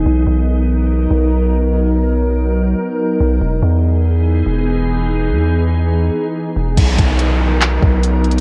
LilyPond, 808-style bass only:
\new Staff \with { instrumentName = "808-style bass" } { \clef bass \time 4/4 \key b \major \tempo 4 = 143 b,,8 b,,2 b,,4.~ | b,,2~ b,,8 r4 b,,8 | e,,8 e,2 e,,4.~ | e,,8 e,2 r4 e,,8 |
b,,8 b,,2 b,,4. | }